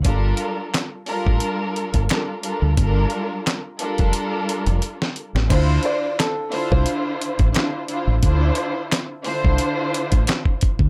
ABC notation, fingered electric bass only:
X:1
M:4/4
L:1/16
Q:"Swing 16ths" 1/4=88
K:Dm
V:1 name="Fingered electric bass" clef=bass
G,,,2 z4 z A,,, z3 G,,, z3 D,, | G,,,2 z4 z F,,, z3 F,,, z3 A,,, | D,,2 z4 z C,, z3 A,,, z3 A,,, | D,,2 z4 z C,, z3 A,,, z3 D,, |]